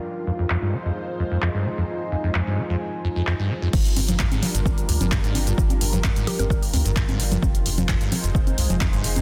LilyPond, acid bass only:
\new Staff \with { instrumentName = "Acid bass" } { \clef bass \time 4/4 \key g \phrygian \tempo 4 = 130 r8 f,16 f,16 f,16 g,16 f16 f,16 r8 f,16 f,16 f,16 g,16 f16 f,16 | r8 f,16 f,16 f,16 g,16 f16 f,16 r8 f,16 f,16 f,16 g,16 f16 f,16 | r8 g,16 g,16 g,16 aes,16 g16 g,16 r8 g,16 g,16 g,16 aes,16 g16 g,16 | r8 g,16 g,16 g,16 aes,16 g16 g,16 r8 g,16 g,16 g,16 aes,16 g16 g,16 |
r8 f,16 f,16 f,16 g,16 f16 f,16 r8 f,16 f,16 f,16 g,16 f16 f,16 | }